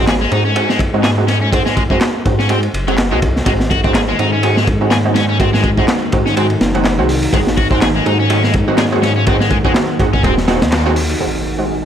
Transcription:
Already playing: G#1 G#3 C4 D#4 F#4
0.07 G#4, snare, clap, ride
0.21 G#3
0.31 G#2 G#3 C4 D#4 F#4, ride
0.45 C#4
0.56 G#3 C4 D#4 F#4, ride
0.69 G#3, snare
0.79 kick, ride
0.94 G#3 C4 D#4 F#4
1.04 G#4, snare, clap, ride
1.18 G#3 C4 D#4 F#4
1.28 C#4, snare, ride
1.42 C#4
1.52 G#3 C4 D#4 F#4, kick, ride
1.66 G#3, snare
1.76 G#3, kick, ride
1.90 G#3 C4 D#4 F#4, kick
2.01 snare, clap, ride
2.25 G#2 G#3 C4 D#4 F#4, kick, ride
2.39 C#4, snare
2.49 G#3 C4 D#4 F#4, ride
2.63 ride
2.74 F#1, ride
2.87 F#3 G#3 C4 D#4 F#4, ride
2.98 snare, clap, ride
3.12 C2 G#3 C4 D#4 F#4
3.22 kick, ride
3.36 snare
3.46 G#1 D#3 F#3 G#3 C4 D#4 F#4, kick, ride
3.60 snare
3.70 F#4, kick, ride
3.84 G#3 C4 D#4 F#4, kick
3.94 G#4, snare, clap, ride
4.08 G#3
4.18 G#2 G#3 C4 D#4 F#4, ride
4.32 C#4
4.43 G#3 C4 D#4 F#4, ride
4.56 G#3, snare
4.67 kick, ride
4.81 G#3 C4 D#4 F#4
4.91 G#4, snare, clap, ride
5.05 G#3 C4 D#4 F#4
5.15 C#4, snare, ride
5.29 C#4
5.40 G#3 C4 D#4 F#4, kick, ride
5.53 G#3, snare
5.64 G#3, kick, ride
5.78 G#3 C4 D#4 F#4, kick
5.88 snare, clap, ride
6.12 G#2 G#3 C4 D#4 F#4, kick, ride
6.26 C#4, snare
6.36 G#3 C4 D#4 F#4, ride
6.50 ride
6.61 F#1, snare, ride
6.74 G#3 C4 D#4 F#4, ride
6.84 snare, clap, ride
6.99 C2 G#3 C4 D#4 F#4
7.09 open hi-hat
7.23 ride
7.33 G#1 G#3 A#3 C4 D#4 F#4, kick, ride
7.47 snare
7.57 F#4, kick, ride
7.71 G#3 C4 D#4 F#4, kick
7.81 G#4, snare, clap, ride
7.95 G#3
8.06 G#2 G#3 C4 D#4 F#4, ride
8.19 C#4
8.30 G#3 C4 D#4 F#4, ride
8.43 G#3, snare
8.54 kick, ride
8.67 G#3 C4 D#4 F#4
8.78 G#4, snare, clap, ride
8.92 G#3 C4 D#4 F#4
9.02 C#4, snare, ride
9.16 C#4
9.27 G#3 C4 D#4 F#4, kick, ride
9.41 G#3, snare
9.50 G#3, kick, ride
9.65 G#3 C4 D#4 F#4, kick
9.75 snare, clap, ride
9.99 G#2 G#3 C4 D#4 F#4, kick, ride
10.13 C#4, kick
10.23 D#1 G#3 C4 D#4 F#4, kick, ride
10.38 snare
10.47 G#3 C4 D#4 F#4, snare, ride
10.62 D#2, snare, ride
10.72 snare, clap, ride
10.86 G#3 C4 D#4 F#4
10.96 open hi-hat
11.09 ride
11.20 D#3 F#3 G#3 C4 D#4 F#4, impact
11.45 F#4
11.58 G#3 C4 D#4 F#4
11.69 G#4

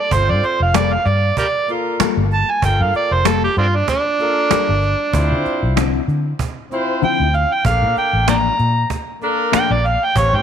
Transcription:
0.00 D5
0.11 G1 C4 F4 A4 C5, cajon bass
0.29 G2 D5
0.43 C5, muted fingered electric bass stroke, cajon slap
0.60 F1 F5
0.74 G3 A#3 F4 A4 D5, cajon slap
0.93 F5
1.05 G2 D5, cajon slap
1.37 G4 A#4 D5, cajon bass
1.68 A#3 F4 A4 A#4, cajon slap
2.00 G3 A#3 F4 A4, muted fingered electric bass stroke, cajon slap
2.17 G1
2.31 A5, cajon slap
2.51 G#5
2.62 G1 A#3 F4 A4 A#4 G5, cajon bass
2.80 G2 F5
2.94 D5, muted fingered electric bass stroke, cajon slap
3.11 F1 C5
3.25 G3 A#3 F4 A4, cajon slap
3.44 G4
3.56 G2 C4 D4 F4, cajon slap
3.76 D4
3.88 D4, cajon bass, cajon slap
4.19 A#3 F4 A4 A#4, cajon slap
4.50 G3 A#3 F4 A4, muted fingered electric bass stroke, cajon slap
4.69 G1
4.82 cajon slap
5.12 D2 C4 E4 F4 C5, cajon bass
5.32 D3
5.45 muted fingered electric bass stroke, cajon slap
5.63 C2
5.76 D3 F3 C4 E4, cajon slap
6.08 D3, cajon slap
6.39 cajon bass
6.70 C4 E4 F4 C5, cajon slap
7.02 D3 F3 C4 E4 G5, muted fingered electric bass stroke, cajon slap
7.20 D2
7.34 F5, cajon slap
7.53 G5
7.64 A#1 A#3 D4 A4 A#4 F5, cajon bass
7.82 A#2
7.96 G5, muted fingered electric bass stroke, cajon slap
8.13 A1
8.27 A#2 F3 A3 D4 D5 G5 A#5, cajon slap
8.59 A#2, cajon slap
8.90 cajon bass, cajon slap
9.21 A#3 D4 A4 A#4, cajon slap
9.52 A#2 F3 A3 D4 G5, muted fingered electric bass stroke, cajon slap
9.70 A#1 D5
9.85 F5, cajon slap
10.04 G5
10.15 A1 C4 C#4 G4 C5 C#5, cajon bass
10.33 A2 G5

